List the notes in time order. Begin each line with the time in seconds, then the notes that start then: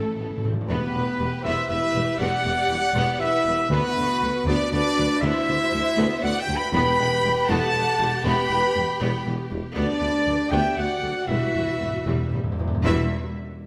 Already playing: A2 A3 E4 A4
0.08 A2
0.14 A1 A2
0.19 A1 A2 B3
0.30 A2
0.38 A2
0.43 A1 A2 C4
0.53 A2
0.61 A2
0.68 E1 E2 B3 G4 B4
0.94 E1 E2 B3
1.19 E1 E2 G3
1.43 E1 E2 B3 E4 C5 E5
1.68 E1 E2 B3 E4 B4 E5
1.94 E1 E2 G3
2.18 E1 E2 B3 G4 D5 F#5
2.44 E1 E2 B3
2.69 E1 E2 G3
2.94 E1 E2 B3
3.20 E1 E2 B3 E4 B4 E5
3.44 E1 E2 G3
3.69 D2 B3 F#4 B4
3.96 D2 B3
4.21 D2 F#3
4.46 D2 B3 D4 B4 D5
4.71 D2 B3 D4 B4 D5
4.96 D2 F#3
5.20 D2 B3 E4 C5 E5
5.47 D2 B3
5.72 D2 F#3
5.97 D2 B3
6.21 D2 B3 F#4 D5 F#5
6.37 G4 E5 G5
6.41 G5
6.48 D2 F#3
6.55 B4 G5 B5
6.72 E1 E2 B3 G4 B4 G5 B5
6.98 E1 E2 B3
7.23 E1 E2 G3
7.47 E1 E2 B3 A4 F#5 A5
7.74 E1 E2 B3
7.99 E1 E2 G3
8.22 E1 E2 B3 B4 G5 B5
8.27 B5
8.50 E1 E2 B3
8.75 E1 E2 G3
9.00 E1 E2 B3
9.25 E1 E2 B3
9.51 E1 E2 G3
9.74 D2 B3 D4 B4 D5
10.01 D2 B3
10.26 D2 F#3
10.51 D2 B3 G4 E5 G5
10.76 D2 B3 F#4 D5 F#5
11.01 D2 F#3
11.27 E1 E2 G3 E4 B4 E5
11.36 E2
11.44 E2
11.51 E1 E2 G3
11.59 E2
11.67 E2
11.75 E2
11.80 E1 E2 F#3
11.90 E2
11.97 E2
12.05 E1 E2 G3
12.13 E2
12.20 E2
12.28 E1 E2
12.32 E2 G3
12.44 E2
12.52 E2
12.58 E1 E2 F#3
12.68 E2
12.74 E2
12.84 E1 E2 G3 E4 F#4 B4 E5